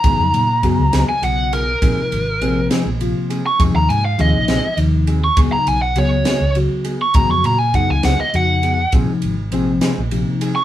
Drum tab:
RD |xxxxxx|xxxxxx|xxxxxx|xxxxxx|
SD |---o--|---o--|---o--|---o--|
BD |o-o---|o-----|o-----|o-----|

RD |xxxxxx|xxxxxx|
SD |---o--|---o--|
BD |o-o---|o-----|